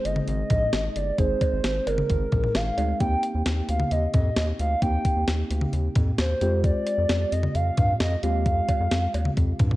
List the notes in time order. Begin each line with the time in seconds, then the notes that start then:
Already playing: G#3 C4 D#4 G#4
0.05 G1 D#5, closed hi-hat
0.16 mid tom
0.28 G#1 D#5, closed hi-hat
0.50 A#1, kick, closed hi-hat, mid tom
0.73 G#1, snare, closed hi-hat
0.96 G1 D5, closed hi-hat
1.18 G#1 G#3 C4 D#4 G#4 C5, kick, closed hi-hat
1.41 kick, closed hi-hat, cowbell
1.53 G#1
1.64 G#1, snare, closed hi-hat
1.87 G1 A#4, closed hi-hat, cowbell
1.98 mid tom
2.09 G#1, kick, closed hi-hat
2.32 A#1, kick, closed hi-hat, mid tom
2.44 mid tom
2.55 G#1 F5, snare, closed hi-hat
2.78 D2 G#3 C4 D#4 G#4, closed hi-hat, cowbell
3.00 D#2 A#3 C4 D#4 G4 G5, kick, closed hi-hat
3.23 closed hi-hat
3.35 D#2
3.46 D#2, snare, closed hi-hat
3.69 D2 F5, closed hi-hat
3.80 mid tom
3.91 D#2 D#5, closed hi-hat
4.14 F2 D#5, kick, closed hi-hat, mid tom
4.37 D#2 D#5, snare, closed hi-hat
4.59 D2 F5, closed hi-hat
4.82 D#2 A#3 C4 D#4 G4 G5, kick, closed hi-hat
5.05 kick, closed hi-hat
5.16 D#2
5.28 D#2, snare, closed hi-hat
5.50 D2, closed hi-hat
5.61 mid tom
5.73 D#2, closed hi-hat
5.95 F2, kick, closed hi-hat, mid tom
6.18 D#2 C5, snare, closed hi-hat
6.41 F2 G#3 C4 F4 G4, closed hi-hat
6.64 D5, kick, closed hi-hat
6.87 closed hi-hat
6.98 F2
7.09 F2, snare, closed hi-hat
7.32 F2 D#5, closed hi-hat
7.43 mid tom
7.55 F2 F5, closed hi-hat
7.77 G2, kick, closed hi-hat, mid tom
8.00 F2 D#5, snare, closed hi-hat
8.23 D#2 G#3 C4 F4 G4 F5, closed hi-hat
8.46 F2, kick, closed hi-hat
8.68 kick, closed hi-hat, cowbell
8.80 F2
8.91 F2, snare, closed hi-hat
9.14 D#2, closed hi-hat, cowbell
9.25 mid tom
9.37 F2, kick, closed hi-hat
9.59 G2, kick, closed hi-hat, mid tom
9.71 mid tom